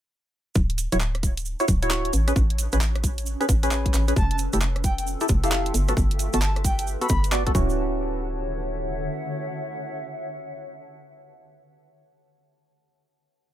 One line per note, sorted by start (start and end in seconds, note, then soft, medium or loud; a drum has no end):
0.55 0.87 D1 loud
0.55 2.13 D4 medium
0.55 kick loud
0.55 cabasa soft
0.70 closed hi-hat soft
0.76 2.97 C#5 medium
0.76 open hi-hat loud
0.76 cabasa medium
0.92 1.55 D1 loud
0.92 0.97 E4 medium
0.92 0.97 F#4 medium
0.92 0.97 C#5 medium
0.92 cross-stick soft
0.92 closed hi-hat medium
0.92 cabasa soft
1.00 2.95 F#4 medium
1.00 clap loud
1.00 cabasa soft
1.15 cross-stick medium
1.15 closed hi-hat soft
1.23 kick medium
1.23 open hi-hat loud
1.23 cabasa medium
1.37 closed hi-hat medium
1.37 cabasa soft
1.45 cabasa soft
1.60 1.65 E4 medium
1.60 1.65 F#4 medium
1.60 1.65 C#5 medium
1.60 closed hi-hat soft
1.60 cabasa soft
1.68 2.10 D1 loud
1.68 kick loud
1.68 open hi-hat loud
1.68 cabasa medium
1.82 2.12 E4 medium
1.82 2.12 F#4 medium
1.82 2.12 C#5 loud
1.82 closed hi-hat medium
1.82 cabasa soft
1.91 clap loud
1.91 cabasa medium
2.05 closed hi-hat soft
2.13 2.32 A1 medium
2.13 4.17 C#4 medium
2.13 open hi-hat loud
2.13 cabasa medium
2.28 2.33 C#4 medium
2.28 2.33 G#4 medium
2.28 2.33 B4 medium
2.28 cross-stick medium
2.28 closed hi-hat medium
2.28 cabasa soft
2.36 2.68 A1 medium
2.36 kick loud
2.36 cabasa medium
2.50 closed hi-hat soft
2.58 6.58 A4 medium
2.58 open hi-hat loud
2.58 cabasa loud
2.72 3.35 A1 medium
2.72 2.78 C#4 medium
2.72 2.78 G#4 medium
2.72 2.78 B4 medium
2.72 cross-stick soft
2.72 closed hi-hat medium
2.72 cabasa soft
2.81 clap loud
2.81 cabasa medium
2.95 cross-stick medium
2.95 closed hi-hat soft
3.04 4.81 B4 medium
3.04 kick medium
3.04 open hi-hat loud
3.04 cabasa medium
3.18 closed hi-hat medium
3.18 cabasa soft
3.26 cabasa medium
3.40 3.46 C#4 medium
3.40 3.46 G#4 medium
3.40 3.46 B4 medium
3.40 closed hi-hat soft
3.40 cabasa soft
3.49 3.91 A1 loud
3.49 kick loud
3.49 open hi-hat loud
3.49 cabasa medium
3.63 4.05 C#4 medium
3.63 4.05 G#4 medium
3.63 4.05 B4 loud
3.63 closed hi-hat medium
3.63 cabasa soft
3.71 clap loud
3.71 cabasa medium
3.86 kick medium
3.86 closed hi-hat medium
3.94 4.13 A1 medium
3.94 clap medium
3.94 open hi-hat loud
3.94 cabasa medium
4.08 4.13 C#4 medium
4.08 4.13 G#4 medium
4.08 4.13 B4 medium
4.08 closed hi-hat medium
4.08 cabasa soft
4.16 4.48 F1 loud
4.16 5.74 F4 medium
4.16 4.26 A5 medium
4.16 kick loud
4.16 cabasa soft
4.31 4.36 A5 medium
4.31 closed hi-hat soft
4.38 open hi-hat loud
4.38 cabasa medium
4.53 5.16 F1 loud
4.53 4.58 E4 medium
4.53 4.58 G4 medium
4.53 4.58 A4 medium
4.53 6.58 E5 medium
4.53 cross-stick soft
4.53 closed hi-hat medium
4.53 cabasa soft
4.61 clap loud
4.61 cabasa medium
4.76 cross-stick medium
4.76 closed hi-hat soft
4.84 4.93 G5 medium
4.84 kick medium
4.84 open hi-hat loud
4.84 cabasa medium
4.98 5.04 G5 medium
4.98 closed hi-hat medium
4.98 cabasa soft
5.07 cabasa soft
5.21 5.26 E4 medium
5.21 5.26 G4 medium
5.21 5.26 A4 medium
5.21 closed hi-hat soft
5.21 cabasa soft
5.28 5.71 F1 loud
5.28 kick loud
5.28 open hi-hat loud
5.28 cabasa loud
5.43 5.73 E4 loud
5.43 5.73 G4 medium
5.43 5.73 A4 loud
5.43 5.49 F5 medium
5.43 closed hi-hat medium
5.43 cabasa soft
5.51 5.61 F5 medium
5.51 clap loud
5.51 cabasa soft
5.66 closed hi-hat medium
5.74 5.93 G1 medium
5.74 7.55 G4 medium
5.74 open hi-hat loud
5.74 cabasa medium
5.85 5.94 B3 medium
5.85 5.94 F#4 medium
5.85 5.94 A4 medium
5.85 7.55 B4 medium
5.85 cross-stick medium
5.85 closed hi-hat medium
5.85 cabasa soft
5.97 6.29 G1 loud
5.97 kick loud
5.97 cabasa medium
6.11 closed hi-hat soft
6.19 open hi-hat loud
6.19 cabasa medium
6.33 6.96 G1 loud
6.33 6.39 B3 medium
6.33 6.39 F#4 medium
6.33 6.39 A4 medium
6.33 6.39 A5 medium
6.33 cross-stick soft
6.33 closed hi-hat medium
6.33 cabasa soft
6.41 6.51 A5 medium
6.41 clap loud
6.41 cabasa medium
6.56 cross-stick medium
6.56 closed hi-hat soft
6.64 6.74 G5 medium
6.64 kick medium
6.64 open hi-hat loud
6.64 cabasa medium
6.79 6.84 G5 medium
6.79 closed hi-hat medium
6.79 cabasa soft
6.87 cabasa soft
7.01 7.06 B3 medium
7.01 7.06 F#4 medium
7.01 7.06 A4 loud
7.01 7.07 B5 medium
7.01 closed hi-hat soft
7.01 cabasa soft
7.09 7.52 G1 loud
7.09 7.19 B5 medium
7.09 kick loud
7.09 open hi-hat loud
7.09 cabasa loud
7.24 closed hi-hat medium
7.24 cabasa soft
7.32 7.43 B3 medium
7.32 7.43 F#4 medium
7.32 7.43 D5 loud
7.32 clap loud
7.32 cabasa medium
7.46 7.52 B3 medium
7.46 7.52 F#4 medium
7.46 7.52 A4 loud
7.46 kick medium
7.46 closed hi-hat medium
7.55 9.09 D1 loud
7.55 10.75 D3 medium
7.55 10.75 C#4 medium
7.55 10.75 E4 medium
7.55 10.75 F#4 medium
7.55 kick loud
7.55 cabasa medium
7.63 10.84 C#5 medium
7.69 cabasa soft
7.93 11.14 E5 medium
7.98 11.19 F#5 medium